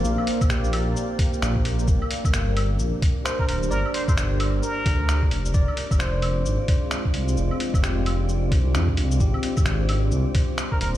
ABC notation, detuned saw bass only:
X:1
M:4/4
L:1/16
Q:"Swing 16ths" 1/4=131
K:Gphr
V:1 name="Detuned saw bass" clef=bass
B,,, z2 B,,,4- B,,, z4 B,,,4 | G,,, z2 G,,,4- G,,, B,,, z4 z D,,,2 | G,,, z2 G,,,4- G,,, z2 D,,4 F,,,2 | F,,, z2 F,,,4- F,,, A,,, z4 z C,,2 |
F,,, z2 F,,,6- F,,, C,,2 F,,2 C,,2 | A,,, z2 A,,,4- A,,, C,, z4 z E,,,2 |]